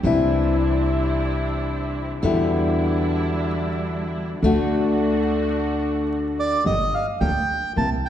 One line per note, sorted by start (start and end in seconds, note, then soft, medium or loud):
0.03 2.12 C2 medium
0.03 2.22 C3 medium
0.03 2.22 E3 medium
0.03 2.23 G3 medium
0.03 2.12 C4 medium
0.03 2.12 D4 medium
0.03 2.24 D4 medium
0.03 2.12 E4 medium
0.03 2.23 E4 medium
2.22 4.32 E2 medium
2.22 4.41 B2 medium
2.22 4.41 D3 medium
2.22 4.31 G3 medium
2.22 4.42 G3 medium
2.22 4.42 B3 medium
2.22 4.31 D4 soft
2.22 4.31 E4 medium
2.22 4.43 E4 medium
4.42 6.54 D2 medium
4.42 6.63 D3 medium
4.42 6.53 A3 medium
4.42 6.64 A3 medium
4.42 6.53 D4 soft
4.42 6.64 D4 medium
4.42 6.54 F#4 medium
4.42 6.65 F#4 medium
6.40 6.64 D5 medium
6.64 6.89 G1 medium
6.64 6.73 D3 medium
6.64 6.73 G3 soft
6.64 6.74 A#3 soft
6.64 6.74 D4 medium
6.64 6.74 G4 medium
6.64 6.94 D#5 medium
6.94 7.06 F5 medium
7.21 7.44 D2 medium
7.21 7.30 D3 soft
7.21 7.30 G3 medium
7.21 7.30 A#3 medium
7.21 7.30 D4 medium
7.21 7.30 G4 medium
7.21 7.73 G5 medium
7.76 8.00 C2 medium
7.76 7.85 C3 medium
7.76 7.85 E3 medium
7.76 7.85 A#3 medium
7.76 7.86 C4 medium
7.76 7.86 E4 medium
7.76 7.90 A5 medium
8.05 8.09 G5 medium